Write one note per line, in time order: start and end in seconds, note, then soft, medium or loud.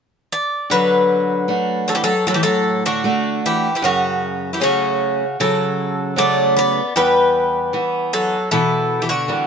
0.32 0.68 D5 medium
0.70 1.46 D3 medium
0.70 1.84 F#3 medium
0.70 1.89 B4 medium
1.48 2.11 A3 soft
1.48 2.11 D4 soft
1.48 2.11 F#4 soft
1.88 1.95 F#3 medium
1.88 1.94 A4 medium
1.95 2.02 E3 medium
1.95 2.02 G4 medium
2.04 2.25 F#3 medium
2.04 2.25 A4 medium
2.27 3.02 A2 medium
2.27 2.34 F#3 medium
2.27 2.34 A4 medium
2.34 2.41 E3 medium
2.34 2.42 G4 medium
2.43 2.82 F#3 medium
2.43 2.83 A4 medium
2.86 3.40 D3 medium
2.86 3.40 F#4 medium
3.04 3.67 A3 soft
3.04 3.67 D4 soft
3.04 3.68 F#4 soft
3.46 3.74 E3 medium
3.46 3.74 G4 medium
3.75 3.82 E3 medium
3.75 3.83 G4 medium
3.82 4.58 F#2 medium
3.82 4.50 C#3 medium
3.82 4.54 F#4 medium
4.53 4.60 E3 medium
4.53 4.61 G4 medium
4.60 5.35 C#3 medium
4.60 5.23 F#3 soft
4.60 5.23 A3 soft
4.60 5.23 C#4 soft
4.60 5.40 F#4 medium
5.40 6.15 C#3 medium
5.40 6.14 F#3 medium
5.40 6.14 A4 medium
6.16 6.80 C#3 medium
6.16 6.79 F#3 soft
6.16 6.79 A3 soft
6.16 6.54 A3 medium
6.16 6.57 D5 medium
6.57 6.93 B3 medium
6.57 6.96 D5 medium
6.96 7.71 E2 medium
6.96 8.08 G3 medium
6.96 8.13 B4 medium
7.73 8.35 E3 soft
7.73 8.36 B3 medium
8.13 8.49 F#3 medium
8.13 8.49 A4 medium
8.51 9.27 B2 medium
8.51 8.98 E3 medium
8.51 9.03 A4 medium
9.02 9.09 E3 soft
9.02 9.09 G4 medium
9.09 9.47 D3 medium
9.09 9.47 F#4 medium
9.28 9.47 E3 soft
9.28 9.47 G3 soft
9.28 9.47 B3 soft